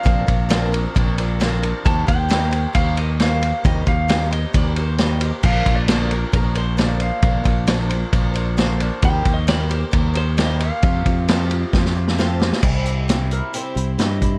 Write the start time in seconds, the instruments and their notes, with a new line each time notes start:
Already playing: electric slide guitar F5
0.03 fingered electric bass A#1, twelve-string acoustic guitar A#2 D3 F3 C4 D4 A#4, kick, ride
0.27 fingered electric bass A#1, twelve-string acoustic guitar F3 C4 D4 A#4, kick, ride
0.49 twelve-string acoustic guitar A#2 D3 F3 C4 D4 A#4, snare, ride
0.72 twelve-string acoustic guitar F3 C4 D4 A#4, ride
0.95 fingered electric bass A#1, twelve-string acoustic guitar F3 C4 D4 A#4, kick, ride
1.18 twelve-string acoustic guitar F3 C4 D4 A#4, ride
1.40 twelve-string acoustic guitar A#2 D3 F3 C4 D4 A#4, snare, ride
1.62 twelve-string acoustic guitar F3 C4 D4 A#4, ride
1.85 fingered electric bass D#2, twelve-string acoustic guitar D#3 G3 A#3 G4 C5, electric slide guitar A5, kick, ride
2.07 fingered electric bass D#2, twelve-string acoustic guitar A#3 G4 C5, electric slide guitar G5, kick, ride
2.29 twelve-string acoustic guitar D#3 G3 A#3 G4 C5, snare, ride
2.51 twelve-string acoustic guitar A#3 G4 C5, ride
2.73 fingered electric bass D#2, twelve-string acoustic guitar G3 A#3 G4 C5, electric slide guitar F5, kick, ride
2.96 twelve-string acoustic guitar A#3 G4 C5, electric slide guitar D#5, ride
3.20 twelve-string acoustic guitar D#3 G3 A#3 G4 C5, electric slide guitar F5, snare, ride
3.42 twelve-string acoustic guitar A#3 G4 C5, ride
3.64 fingered electric bass D#2, twelve-string acoustic guitar D#3 G3 A#3 G4 C5, electric slide guitar D#5, kick, ride
3.86 fingered electric bass D#2, twelve-string acoustic guitar A#3 G4 C5, electric slide guitar F5, kick, ride
4.08 twelve-string acoustic guitar D#3 G3 A#3 G4 C5, snare, ride
4.31 twelve-string acoustic guitar A#3 G4 C5, electric slide guitar D#5, ride
4.53 fingered electric bass D#2, twelve-string acoustic guitar G3 A#3 G4 C5, electric slide guitar D5, kick, ride
4.76 twelve-string acoustic guitar A#3 G4 C5, electric slide guitar C5, ride
4.98 twelve-string acoustic guitar D#3 G3 A#3 G4 C5, electric slide guitar D#5, snare, ride
5.20 twelve-string acoustic guitar A#3 G4 C5, ride
5.43 fingered electric bass A#1, twelve-string acoustic guitar A#2 D3 F3 A#3 D4 C5, electric slide guitar F5, kick, crash
5.65 fingered electric bass A#1, twelve-string acoustic guitar F3 A#3 D4 C5, kick, ride
5.75 electric slide guitar D5
5.88 twelve-string acoustic guitar A#2 D3 F3 A#3 D4 C5, electric slide guitar C5, snare, ride
6.11 twelve-string acoustic guitar F3 A#3 D4 C5, electric slide guitar A#4, ride
6.32 fingered electric bass A#1, twelve-string acoustic guitar F3 A#3 D4 C5, electric slide guitar A#4, kick, ride
6.55 twelve-string acoustic guitar F3 A#3 D4 C5, electric slide guitar C5, ride
6.77 twelve-string acoustic guitar A#2 D3 F3 A#3 D4 C5, electric slide guitar D5, snare, ride
7.00 twelve-string acoustic guitar F3 A#3 D4 C5, electric slide guitar F5, ride
7.22 fingered electric bass A#1, twelve-string acoustic guitar A#2 D3 F3 A#3 D4 C5, kick, ride
7.44 fingered electric bass A#1, twelve-string acoustic guitar F3 A#3 D4 C5, kick, ride
7.67 twelve-string acoustic guitar A#2 D3 F3 A#3 D4 C5, snare, ride
7.90 twelve-string acoustic guitar F3 A#3 D4 C5, ride
8.13 fingered electric bass A#1, twelve-string acoustic guitar F3 A#3 D4 C5, kick, ride
8.34 twelve-string acoustic guitar F3 A#3 D4 C5, ride
8.57 twelve-string acoustic guitar A#2 D3 F3 A#3 D4 C5, snare, ride
8.80 twelve-string acoustic guitar F3 A#3 D4 C5, ride
9.02 fingered electric bass D#2, twelve-string acoustic guitar D#3 G3 A#3 G4 C5, electric slide guitar G5, kick, ride
9.25 fingered electric bass D#2, twelve-string acoustic guitar A#3 G4 C5, kick, ride
9.34 electric slide guitar D#5
9.47 twelve-string acoustic guitar D#3 G3 A#3 G4 C5, electric slide guitar D5, snare, ride
9.69 twelve-string acoustic guitar A#3 G4 C5, electric slide guitar C5, ride
9.91 fingered electric bass D#2, twelve-string acoustic guitar G3 A#3 G4 C5, kick, ride
10.14 twelve-string acoustic guitar A#3 G4 C5, electric slide guitar C5, ride
10.37 twelve-string acoustic guitar D#3 G3 A#3 G4 C5, electric slide guitar D#5, snare, ride
10.59 twelve-string acoustic guitar A#3 G4 C5, electric slide guitar F5, ride
10.82 fingered electric bass F2, twelve-string acoustic guitar F3 A3 C4 F4 G4, kick, ride
11.06 fingered electric bass F2, twelve-string acoustic guitar C4 F4 G4, kick, ride
11.28 twelve-string acoustic guitar F3 A3 C4 F4 G4, snare, ride
11.50 twelve-string acoustic guitar C4 F4 G4, ride
11.63 electric slide guitar D#5
11.73 fingered electric bass F2, twelve-string acoustic guitar A3 C4 F4 G4, kick, snare
11.85 snare
11.95 twelve-string acoustic guitar C4 F4 G4
12.08 snare
12.18 twelve-string acoustic guitar F3 A3 C4 F4 G4, snare
12.40 twelve-string acoustic guitar C4 F4 G4, snare
12.53 snare
12.62 fingered electric bass C2, twelve-string acoustic guitar C3 G3 C4 E4 G4, kick, crash
12.85 twelve-string acoustic guitar C4 E4 G4, closed hi-hat
13.08 twelve-string acoustic guitar G3 C4 E4 G4, snare, closed hi-hat
13.31 twelve-string acoustic guitar C4 E4 G4, electric slide guitar A#4, closed hi-hat
13.53 twelve-string acoustic guitar C3 G3 C4 E4 G4, electric slide guitar C5, closed hi-hat
13.75 fingered electric bass C2, twelve-string acoustic guitar C4 E4 G4, closed hi-hat
13.98 fingered electric bass G2, twelve-string acoustic guitar G3 C4 E4 G4, electric slide guitar D#5, snare, closed hi-hat
14.21 twelve-string acoustic guitar C4 E4 G4, kick, closed hi-hat